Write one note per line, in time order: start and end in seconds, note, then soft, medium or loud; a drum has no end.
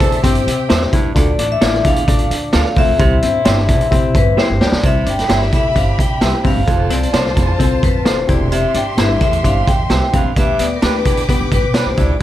0.00 0.19 E2 medium
0.00 0.90 C4 medium
0.00 0.21 D4 loud
0.00 0.90 G4 medium
0.00 0.21 A4 loud
0.00 0.89 C5 medium
0.00 0.90 E5 medium
0.00 0.21 A5 loud
0.00 kick loud
0.00 closed hi-hat medium
0.12 closed hi-hat medium
0.23 0.41 G1 medium
0.23 0.50 C4 medium
0.23 0.67 C4 medium
0.23 0.50 E4 medium
0.23 0.50 G4 medium
0.23 0.89 G4 medium
0.23 0.50 C5 medium
0.23 0.89 G5 loud
0.23 kick medium
0.23 closed hi-hat medium
0.35 closed hi-hat soft
0.47 0.65 C3 medium
0.47 closed hi-hat medium
0.69 0.88 E2 medium
0.69 0.96 C4 medium
0.69 0.88 D4 medium
0.69 0.96 E4 medium
0.69 0.79 G4 medium
0.69 0.96 G4 medium
0.69 0.80 C5 medium
0.69 0.96 C5 loud
0.69 0.80 E5 medium
0.69 snare loud
0.69 closed hi-hat medium
0.82 snare soft
0.92 1.11 D#2 medium
0.92 1.11 G2 medium
0.92 1.11 E4 medium
0.92 kick medium
0.92 closed hi-hat medium
1.15 1.34 D2 medium
1.15 1.33 D2 loud
1.15 2.73 F3 medium
1.15 2.73 A3 medium
1.15 1.42 D4 medium
1.15 1.42 F4 medium
1.15 1.42 A4 medium
1.15 2.73 D5 medium
1.15 1.42 D5 medium
1.15 1.52 D5 medium
1.15 kick loud
1.15 closed hi-hat medium
1.39 1.56 A1 medium
1.39 1.57 D4 medium
1.39 closed hi-hat medium
1.52 1.86 E5 loud
1.61 1.79 A1 medium
1.61 1.88 D4 medium
1.61 2.05 E4 medium
1.61 1.88 F4 medium
1.61 1.71 A4 medium
1.61 1.89 A4 medium
1.61 1.72 D5 medium
1.61 1.89 D5 medium
1.61 1.72 F5 medium
1.61 snare loud
1.61 closed hi-hat medium
1.74 snare soft
1.84 2.03 E2 medium
1.84 2.03 D3 loud
1.84 2.29 F5 medium
1.84 kick loud
1.84 closed hi-hat medium
1.96 closed hi-hat medium
2.07 2.26 A1 medium
2.07 2.34 D4 medium
2.07 2.51 D4 medium
2.07 2.34 F4 medium
2.07 2.35 A4 medium
2.07 2.35 D5 medium
2.07 kick medium
2.07 closed hi-hat medium
2.19 closed hi-hat soft
2.30 2.48 D3 medium
2.30 closed hi-hat medium
2.53 2.63 D2 loud
2.53 2.80 D4 medium
2.53 2.80 F4 medium
2.53 2.63 A4 loud
2.53 2.80 A4 medium
2.53 2.64 D5 loud
2.53 2.81 D5 medium
2.53 2.64 F5 loud
2.53 2.78 F5 medium
2.53 snare loud
2.53 closed hi-hat medium
2.65 snare soft
2.76 2.85 D2 loud
2.76 2.95 F2 medium
2.76 2.94 C4 medium
2.76 4.34 E5 loud
2.76 kick medium
2.76 open hi-hat medium
2.89 2.97 C#2 medium
2.99 3.17 C2 loud
2.99 3.18 C3 loud
2.99 4.58 G3 medium
2.99 3.26 C4 medium
2.99 3.26 E4 medium
2.99 4.58 E4 medium
2.99 3.26 G4 medium
2.99 3.26 C5 medium
2.99 4.58 C5 medium
2.99 kick loud
2.99 closed hi-hat medium
3.22 3.41 G1 medium
3.22 3.41 C4 medium
3.22 closed hi-hat medium
3.45 3.70 G1 loud
3.45 3.72 C4 medium
3.45 3.89 D4 loud
3.45 3.72 E4 medium
3.45 3.55 G4 medium
3.45 3.72 G4 medium
3.45 3.56 C5 medium
3.45 3.72 C5 medium
3.45 3.56 E5 medium
3.45 snare loud
3.45 closed hi-hat loud
3.58 snare soft
3.69 3.87 E2 medium
3.69 3.86 C3 medium
3.69 kick medium
3.69 closed hi-hat medium
3.81 closed hi-hat medium
3.91 4.15 C3 loud
3.91 4.18 C4 medium
3.91 4.35 C4 medium
3.91 4.18 E4 medium
3.91 4.18 G4 medium
3.91 4.18 C5 loud
3.91 kick medium
3.91 closed hi-hat medium
4.15 4.33 G2 medium
4.15 4.39 B4 medium
4.15 kick loud
4.15 closed hi-hat medium
4.37 4.64 C4 medium
4.37 4.64 E4 medium
4.37 4.56 E4 medium
4.37 4.64 G4 medium
4.37 4.47 G4 medium
4.37 4.64 C5 medium
4.37 4.48 C5 medium
4.37 4.48 E5 loud
4.37 4.80 G5 medium
4.37 snare medium
4.41 4.63 C5 medium
4.50 4.58 G1 medium
4.61 4.70 D2 medium
4.61 4.79 G2 medium
4.61 4.79 G4 medium
4.61 4.86 D5 medium
4.61 snare medium
4.72 4.81 C#2 medium
4.72 snare loud
4.82 5.01 C2 medium
4.82 5.16 C3 medium
4.82 5.09 C4 medium
4.82 5.10 E4 medium
4.82 5.10 G4 medium
4.82 6.64 G4 medium
4.82 5.10 C5 medium
4.82 6.64 E5 medium
4.82 5.08 E5 loud
4.82 6.64 B5 medium
4.82 kick loud
4.82 closed hi-hat medium
5.06 5.25 G1 medium
5.06 5.24 D4 medium
5.06 5.32 G5 loud
5.06 closed hi-hat medium
5.19 snare soft
5.19 closed hi-hat soft
5.28 5.48 G1 medium
5.28 5.56 C4 medium
5.28 5.56 E4 medium
5.28 5.73 E4 medium
5.28 5.56 G4 medium
5.28 5.39 G4 medium
5.28 5.40 C5 medium
5.28 5.56 D5 medium
5.28 5.40 E5 medium
5.28 snare loud
5.28 closed hi-hat medium
5.33 5.54 E5 medium
5.42 snare soft
5.53 5.71 A2 medium
5.53 5.71 C3 loud
5.53 5.78 E5 medium
5.53 kick loud
5.53 closed hi-hat medium
5.75 5.94 G1 medium
5.75 6.02 C4 medium
5.75 6.19 D4 medium
5.75 6.02 E4 medium
5.75 6.02 G4 medium
5.75 6.02 C5 medium
5.75 5.98 F5 loud
5.75 kick medium
5.75 closed hi-hat medium
5.99 6.17 C3 medium
5.99 6.47 G5 loud
5.99 kick medium
5.99 closed hi-hat medium
6.21 6.31 C2 medium
6.21 6.48 C4 medium
6.21 6.48 E4 medium
6.21 6.32 G4 medium
6.21 6.49 G4 medium
6.21 6.32 C5 medium
6.21 6.49 C5 medium
6.21 6.32 E5 loud
6.21 snare loud
6.21 closed hi-hat medium
6.44 6.54 G1 medium
6.44 6.63 G2 medium
6.44 6.62 C4 medium
6.44 6.93 F5 loud
6.44 kick medium
6.44 open hi-hat soft
6.56 6.65 F#1 medium
6.67 6.86 F1 medium
6.67 7.00 F2 medium
6.67 6.94 C4 medium
6.67 6.94 F4 medium
6.67 8.26 F4 medium
6.67 6.94 A4 medium
6.67 8.26 C5 medium
6.67 6.94 C5 medium
6.67 8.25 A5 medium
6.67 kick medium
6.67 closed hi-hat medium
6.90 7.08 C2 medium
6.90 7.08 C4 medium
6.90 7.16 D5 loud
6.90 closed hi-hat medium
7.03 closed hi-hat soft
7.13 7.31 C2 medium
7.13 7.40 C4 medium
7.13 7.57 D4 medium
7.13 7.40 F4 medium
7.13 7.24 A4 medium
7.13 7.40 A4 medium
7.13 7.24 C5 medium
7.13 7.41 C5 medium
7.13 7.86 C5 medium
7.13 7.24 F5 medium
7.13 snare loud
7.13 closed hi-hat medium
7.26 snare soft
7.36 7.55 E2 medium
7.36 7.55 F2 medium
7.36 kick medium
7.36 closed hi-hat medium
7.58 7.78 C2 medium
7.58 7.86 C4 medium
7.58 8.03 C4 medium
7.58 7.86 F4 medium
7.58 7.86 A4 medium
7.58 7.86 C5 medium
7.58 kick medium
7.58 closed hi-hat medium
7.83 8.01 F2 medium
7.83 8.08 B4 medium
7.83 kick medium
7.83 closed hi-hat medium
8.04 8.24 F1 medium
8.04 8.26 C4 medium
8.04 8.24 D4 medium
8.04 8.28 F4 medium
8.04 8.29 A4 medium
8.04 8.16 A4 medium
8.04 8.28 C5 medium
8.04 8.16 C5 medium
8.04 8.28 C5 medium
8.04 8.16 F5 medium
8.04 snare loud
8.04 closed hi-hat medium
8.27 8.64 E1 medium
8.27 8.47 D2 medium
8.27 8.84 C4 medium
8.27 8.84 E4 medium
8.27 8.47 E4 medium
8.27 10.32 G4 medium
8.27 8.84 G4 medium
8.27 8.84 C5 medium
8.27 8.53 D5 medium
8.27 10.32 E5 medium
8.27 10.32 C6 medium
8.27 kick loud
8.27 closed hi-hat medium
8.52 8.84 C3 medium
8.52 8.76 E5 loud
8.52 closed hi-hat medium
8.74 8.93 G1 medium
8.74 8.93 D4 medium
8.74 9.00 G5 loud
8.74 closed hi-hat medium
8.97 9.16 G1 loud
8.97 9.24 C4 medium
8.97 9.24 E4 medium
8.97 9.42 E4 medium
8.97 9.25 G4 medium
8.97 9.08 G4 medium
8.97 9.25 B4 medium
8.97 9.08 C5 medium
8.97 9.09 E5 medium
8.97 9.21 E5 medium
8.97 snare loud
8.97 closed hi-hat loud
9.21 9.39 E2 loud
9.21 9.40 A2 medium
9.21 9.45 E5 medium
9.21 kick medium
9.21 closed hi-hat medium
9.33 closed hi-hat soft
9.43 9.62 G1 medium
9.43 9.70 C4 medium
9.43 9.88 D4 medium
9.43 9.70 E4 medium
9.43 9.70 G4 medium
9.43 9.71 C5 medium
9.43 9.69 F5 loud
9.43 kick medium
9.43 closed hi-hat medium
9.67 9.85 E2 medium
9.67 10.15 G5 loud
9.67 kick loud
9.67 closed hi-hat medium
9.90 9.99 C2 medium
9.90 10.17 C4 medium
9.90 10.17 E4 medium
9.90 10.00 G4 medium
9.90 10.17 G4 medium
9.90 10.00 C5 medium
9.90 10.17 C5 medium
9.90 10.01 E5 medium
9.90 snare loud
9.90 closed hi-hat medium
10.13 10.22 E2 medium
10.13 10.32 G2 medium
10.13 10.31 C4 medium
10.13 10.38 F5 medium
10.13 kick medium
10.13 closed hi-hat medium
10.24 10.33 D#2 medium
10.35 10.54 D2 medium
10.35 10.69 G2 medium
10.35 10.63 B3 medium
10.35 10.63 D4 medium
10.35 10.63 G4 medium
10.35 12.17 B4 medium
10.35 10.63 B4 medium
10.35 10.61 E5 loud
10.35 12.16 G5 medium
10.35 12.17 D6 medium
10.35 kick loud
10.35 closed hi-hat medium
10.59 10.77 D2 medium
10.59 10.78 B3 medium
10.59 10.77 D5 medium
10.59 closed hi-hat medium
10.76 10.83 A#4 medium
10.82 11.00 D2 loud
10.82 11.09 B3 medium
10.82 10.92 D4 medium
10.82 11.09 D4 medium
10.82 11.26 D4 medium
10.82 10.93 G4 medium
10.82 11.09 G4 medium
10.82 10.93 B4 medium
10.82 11.10 B4 medium
10.82 11.48 B4 medium
10.82 snare loud
10.82 closed hi-hat medium
11.05 11.24 E2 medium
11.05 11.23 D3 medium
11.05 kick medium
11.05 closed hi-hat medium
11.17 closed hi-hat medium
11.28 11.55 B3 medium
11.28 11.72 B3 medium
11.28 11.55 D4 medium
11.28 11.56 G4 medium
11.28 11.56 B4 medium
11.28 kick medium
11.28 closed hi-hat medium
11.40 11.49 D3 medium
11.52 11.61 G2 medium
11.52 11.76 B4 medium
11.52 kick medium
11.52 closed hi-hat medium
11.64 11.81 B2 medium
11.74 12.01 B3 medium
11.74 12.01 D4 medium
11.74 11.84 D4 medium
11.74 11.93 D4 medium
11.74 11.85 G4 medium
11.74 12.01 G4 medium
11.74 12.01 B4 medium
11.74 11.85 B4 medium
11.74 11.99 C5 medium
11.74 snare loud
11.74 closed hi-hat medium
11.86 11.95 B1 medium
11.86 snare soft
11.97 12.15 C#2 medium
11.97 12.16 G2 medium
11.97 12.16 E4 medium
11.97 12.22 D5 medium
11.97 kick medium
11.97 closed hi-hat medium